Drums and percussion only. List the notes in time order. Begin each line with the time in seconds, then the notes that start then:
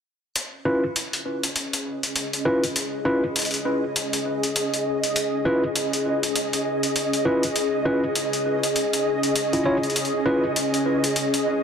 0.36 closed hi-hat
0.96 closed hi-hat
1.13 closed hi-hat
1.43 closed hi-hat
1.56 closed hi-hat
1.73 closed hi-hat
2.03 closed hi-hat
2.16 closed hi-hat
2.33 closed hi-hat
2.64 closed hi-hat
2.76 closed hi-hat
3.36 closed hi-hat
3.39 closed hi-hat
3.42 closed hi-hat
3.45 closed hi-hat
3.51 closed hi-hat
3.54 closed hi-hat
3.96 closed hi-hat
4.13 closed hi-hat
4.43 closed hi-hat
4.56 closed hi-hat
4.74 closed hi-hat
5.04 closed hi-hat
5.16 closed hi-hat
5.76 closed hi-hat
5.93 closed hi-hat
6.23 closed hi-hat
6.36 closed hi-hat
6.53 closed hi-hat
6.83 closed hi-hat
6.96 closed hi-hat
7.13 closed hi-hat
7.43 closed hi-hat
7.56 closed hi-hat
8.15 closed hi-hat
8.33 closed hi-hat
8.63 closed hi-hat
8.76 closed hi-hat
8.93 closed hi-hat
9.23 closed hi-hat
9.36 closed hi-hat
9.53 closed hi-hat
9.83 closed hi-hat
9.90 closed hi-hat
9.96 closed hi-hat
10.05 closed hi-hat
10.56 closed hi-hat
10.74 closed hi-hat
11.04 closed hi-hat
11.16 closed hi-hat
11.34 closed hi-hat